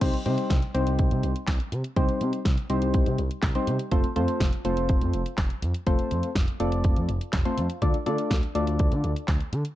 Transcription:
0.01 C2 G3 C4 D#4 G4 C5, kick, closed hi-hat, crash
0.14 closed hi-hat
0.26 C3 G3 C4 D#4 G4 C5, closed hi-hat
0.38 closed hi-hat
0.50 C2, kick, snare, closed hi-hat
0.62 closed hi-hat
0.74 C2 G3 C4 D#4 G4 C5, closed hi-hat
0.87 C2, closed hi-hat
0.99 C2, kick, closed hi-hat
1.11 C3, closed hi-hat
1.23 C2, closed hi-hat
1.36 closed hi-hat
1.47 C2, kick, snare, clap, closed hi-hat
1.60 closed hi-hat
1.72 C3, closed hi-hat
1.84 closed hi-hat
1.96 C2 G3 C4 D#4 G4 C5, kick, closed hi-hat
2.09 closed hi-hat
2.21 C3, closed hi-hat
2.33 closed hi-hat
2.45 C2, kick, snare, closed hi-hat
2.58 closed hi-hat
2.70 C2 G3 C4 D#4 G4 C5, closed hi-hat
2.82 C2, closed hi-hat
2.94 C2, kick, closed hi-hat
3.06 C3, closed hi-hat
3.18 C2, closed hi-hat
3.31 closed hi-hat
3.42 C2, kick, snare, clap, closed hi-hat
3.55 G3 C4 D#4 G4 C5, closed hi-hat
3.67 C3, closed hi-hat
3.79 closed hi-hat
3.91 F1 A3 C4 F4 A4 C5, kick, closed hi-hat
4.04 closed hi-hat
4.16 F2 A3 C4 F4 A4 C5, closed hi-hat
4.28 closed hi-hat
4.40 F1, kick, snare, closed hi-hat
4.53 closed hi-hat
4.65 F1 A3 C4 F4 A4 C5, closed hi-hat
4.77 F1, closed hi-hat
4.89 F1, kick, closed hi-hat
5.01 F2, closed hi-hat
5.13 F1, closed hi-hat
5.26 closed hi-hat
5.38 F1, kick, snare, clap, closed hi-hat
5.50 closed hi-hat
5.62 F2, closed hi-hat
5.74 closed hi-hat
5.87 F1 A3 C4 F4 A4 C5, kick, closed hi-hat
5.99 closed hi-hat
6.11 F2, closed hi-hat
6.23 closed hi-hat
6.35 F1, kick, snare, closed hi-hat
6.48 closed hi-hat
6.60 F1 A3 C4 F4 A4 D5, closed hi-hat
6.72 F1, closed hi-hat
6.84 F1, kick, closed hi-hat
6.96 F2, closed hi-hat
7.09 F1, closed hi-hat
7.21 closed hi-hat
7.33 F1, kick, snare, clap, closed hi-hat
7.45 A3 C4 F4 A4 C5, closed hi-hat
7.58 F2, closed hi-hat
7.70 closed hi-hat
7.82 D2 A3 D4 F4 A4 D5, kick, closed hi-hat
7.94 closed hi-hat
8.06 D3 A3 D4 F4 A4 D5, closed hi-hat
8.18 closed hi-hat
8.31 D2, kick, snare, closed hi-hat
8.43 closed hi-hat
8.55 D2 A3 D4 F4 A4 D5, closed hi-hat
8.67 D2, closed hi-hat
8.79 D2, kick, closed hi-hat
8.92 D3, closed hi-hat
9.04 D2, closed hi-hat
9.16 closed hi-hat
9.28 D2, kick, snare, clap, closed hi-hat
9.40 closed hi-hat
9.53 D3, closed hi-hat
9.65 closed hi-hat

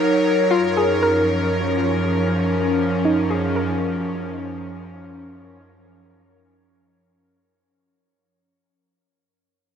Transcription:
Already playing: F#3 D#4 A#4 C#5
0.51 F#2 F4
0.69 C#4
0.77 F3 G#4
1.03 A#4
3.05 D#4
3.30 G#4
3.56 A#4

